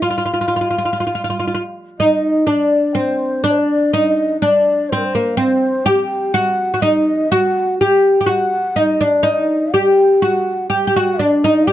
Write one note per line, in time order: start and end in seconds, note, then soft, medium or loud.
0.02 0.09 F4 medium
0.02 1.74 F5 medium
0.10 0.17 F4 medium
0.18 0.24 F4 medium
0.26 0.32 F4 medium
0.34 0.40 F4 medium
0.41 0.47 F4 soft
0.48 0.55 F4 medium
0.56 0.60 F4 soft
0.61 0.69 F4 medium
0.70 0.77 F4 soft
0.78 0.84 F4 medium
0.85 0.92 F4 soft
0.93 0.99 F4 soft
1.00 1.05 F4 soft
1.07 1.14 F4 medium
1.15 1.23 F4 medium
1.24 1.29 F4 medium
1.30 1.38 F4 medium
1.40 1.46 F4 medium
1.47 1.53 F4 soft
1.54 1.62 F4 medium
1.98 2.46 D#4 medium
1.98 2.49 D#5 medium
2.47 2.97 D4 medium
2.47 2.98 D5 medium
2.95 3.45 C4 medium
2.95 3.46 C5 medium
3.44 3.93 D4 medium
3.44 3.52 D5 medium
3.51 3.60 C5 medium
3.58 3.94 D5 medium
3.93 4.42 D#4 medium
3.93 4.41 D#5 medium
4.42 4.92 D4 loud
4.42 4.91 D5 medium
4.89 5.14 C4 medium
4.89 4.99 C5 medium
4.97 5.07 A#4 medium
5.05 5.39 C5 medium
5.15 5.37 A#3 medium
5.37 5.88 C4 medium
5.37 5.88 C5 medium
5.86 6.34 G4 loud
5.86 6.36 G5 medium
6.34 6.73 F#4 loud
6.34 6.77 F#5 medium
6.74 6.82 F#4 medium
6.74 6.83 F#5 medium
6.82 7.28 D#4 medium
6.82 7.33 D#5 medium
7.32 7.81 F#4 medium
7.32 7.80 F#5 medium
7.80 8.19 G4 medium
7.80 8.31 G5 medium
8.21 8.26 G4 medium
8.26 8.76 F#4 medium
8.26 8.81 F#5 medium
8.76 9.01 D#4 medium
8.76 9.05 D#5 medium
9.01 9.26 D4 medium
9.23 9.69 D#4 medium
9.23 9.76 D#5 medium
9.74 10.22 G4 medium
9.74 10.25 G5 medium
10.22 10.69 F#4 medium
10.22 10.71 F#5 medium
10.70 10.86 G4 medium
10.70 11.21 G5 medium
10.87 10.94 G4 medium
10.96 11.20 F#4 medium
11.19 11.44 D4 medium
11.19 11.70 D5 medium
11.44 11.67 D#4 medium
11.67 11.73 G4 medium
11.67 11.73 G5 medium